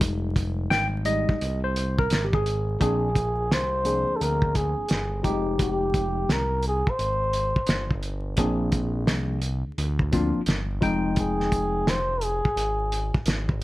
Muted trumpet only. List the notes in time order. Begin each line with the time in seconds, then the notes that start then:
2.83 G#4
3.53 C5
4.16 A4
4.22 A#4
4.57 G#4
5.61 G4
6.32 A#4
6.68 G#4
6.90 C5
11.19 G#4
11.89 C5
12.23 G#4